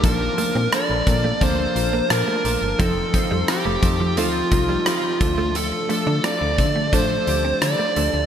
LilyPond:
<<
  \new Staff \with { instrumentName = "Lead electric guitar" } { \time 4/4 \key bes \major \tempo 4 = 87 bes'4 d''4 c''4 bes'4 | a'4 g'4 f'4 f'4 | a'4 d''4 c''4 d''4 | }
  \new Staff \with { instrumentName = "Synth keys" } { \time 4/4 \key bes \major <f bes d' a''>8 <f bes d' a''>8 <f bes d' a'>8 <f bes d' a'>8 <f bes d' a'>8 <f bes d' f'>8 <f bes d' a''>8 <f bes d' a''>8 | <f c' ees' a'>8 <f c' ees' c''>8 <f c' ees' a'>8 <f c' ees' a'>8 <f c' ees' a'>8 <f c' ees' f'>8 <f c' ees' g'>8 <f a d' a'>8~ | <f a d' a'>8 <f a d' a'>8 <f a d' a'>8 <f a d' a'>8 <f a d' a'>8 <f a d' g'>8 <f a d' a'>8 <f a d' a'>8 | }
  \new Staff \with { instrumentName = "Clean electric guitar" } { \time 4/4 \key bes \major r8 a16 c'16 bes16 r8 a16 c'16 r8 bes16 r16 a16 a16 r16 | f16 r8 g16 r16 a16 r16 f16 a16 r8 g16 f16 r8 a16 | r8 a16 d'16 c'16 r8 a16 d'16 r8 c'16 r16 a16 a16 r16 | }
  \new Staff \with { instrumentName = "FM bass" } { \clef bass \time 4/4 \key bes \major bes,,8 r16 bes,16 r16 bes,,16 bes,8 d,8 bes,,8 bes,16 r16 bes,,16 g,,16 | f,,8 r16 f,16 r16 f,,16 f,8 d,8 c,8 r8 d,8~ | d,8 r16 d16 r16 d,16 d8 a,8 d,8 d16 r16 d,16 d,16 | }
  \new DrumStaff \with { instrumentName = "Drums" } \drummode { \time 4/4 <hh bd>8 hh8 <hh ss>8 <hh bd>8 <hh bd>8 hh8 <hh ss>8 hh8 | <hh bd>8 <hh bd>8 <hh ss>8 <hh bd>8 hh8 <hh bd>8 <hh ss>8 <hh bd>8 | hh8 hh8 <hh ss>8 <hh bd>8 <hh bd>8 hh8 <hh ss>8 hh8 | }
>>